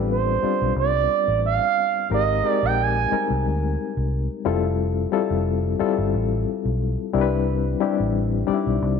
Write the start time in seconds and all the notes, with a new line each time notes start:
Already playing: A1 G3 B3 C4 D4 F4 A4 B4
0.12 C5
0.43 G3 C4 D4 F4 C5, muted fingered electric bass stroke
0.62 B1
0.76 C2 D5
1.28 A1
1.46 F5
2.10 G#1 G#3 C4 D#4 G4 A#4 D#5
2.44 G#3 C4 D#4 G4 A#4
2.48 D5
2.63 A#1 G5
2.82 G#5
3.11 G3 G#3 C4 D#4 A#4, muted fingered electric bass stroke
3.30 C2
3.46 D2
3.97 C2
4.45 F1 G3 C4 E4 F4 A4
5.12 G3 C4 E4 F4 A4
5.30 F1
5.79 G3 C4 E4 F4 A4, muted fingered electric bass stroke
5.98 G1
6.14 A1
6.65 B1
7.13 C2 G3 C4 D4 E4 A#4
7.21 B4
7.80 G3 C4 D4 E4 G4
8.00 A1
8.47 G3 C4 D4 D#4 D5, muted fingered electric bass stroke
8.54 E4
8.67 B1
8.82 C2